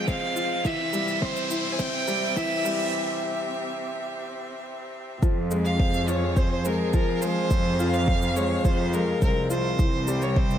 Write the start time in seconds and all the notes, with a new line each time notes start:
Already playing: F3 G#3 C4 F4 G#4 F5, riser
0.07 C4 F5, kick, shaker
0.36 F4, shaker
0.64 C3 E3 E5, kick, shaker
0.93 G3, shaker
1.08 shaker
1.22 C4 C5, kick
1.36 shaker
1.50 E4, shaker
1.55 E5
1.72 G#5
1.79 C4 G5, kick, shaker
2.08 G3, shaker
2.15 G4
2.36 E3 E5, kick, shaker
2.65 G3, shaker
5.23 F2 F3, kick, shaker
5.51 G#3, shaker
5.56 G#4
5.65 F5, shaker
5.80 C4, kick
5.94 shaker
6.08 F4 C#5, shaker
6.36 C4 C5, kick, shaker
6.65 G#3 A#4, shaker
6.93 F3 A#4, kick, shaker
7.08 F5
7.22 G#3 C5, shaker
7.51 F2 C4, kick, shaker
7.79 F4, shaker
7.94 F5, shaker
8.08 C4, kick
8.22 shaker
8.36 G#3 C#5, shaker
8.65 F2 F3 C5, kick, shaker
8.93 G#3 A#4, shaker
9.22 C2 C4 A#4, kick, shaker
9.50 F4 C5, shaker
9.79 C2 C3 E3, kick, shaker
10.07 G3 G5, shaker
10.15 G4
10.22 C#5, shaker
10.36 C4 C5, kick
10.50 shaker